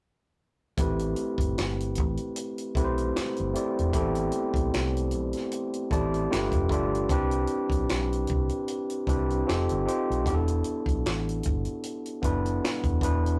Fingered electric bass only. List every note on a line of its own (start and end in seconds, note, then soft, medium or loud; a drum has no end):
0.79 1.12 A1 medium
1.39 1.55 G1 medium
1.59 1.99 G1 medium
1.99 2.17 A1 medium
2.76 3.10 B1 medium
3.18 muted fingered electric bass stroke soft
3.40 3.54 G1 medium
3.79 3.93 E1 medium
3.95 4.28 A1 medium
4.55 4.70 B1 medium
4.75 5.14 C2 medium
5.14 5.32 B1 medium
5.92 6.26 A1 medium
6.33 6.51 G1 medium
6.53 6.70 F1 medium
6.70 7.04 G1 medium
7.11 7.44 C2 medium
7.71 7.86 B1 medium
7.91 8.24 B1 medium
8.31 8.48 C2 medium
9.09 9.42 C2 medium
9.49 9.67 F1 medium
9.71 9.85 G1 medium
10.10 10.24 B1 medium
10.27 10.60 E1 medium
10.87 11.02 B1 medium
11.07 11.40 A1 medium
11.47 11.65 G1 medium
12.24 12.57 F#1 medium
12.85 13.00 E1 medium
13.03 13.36 E1 medium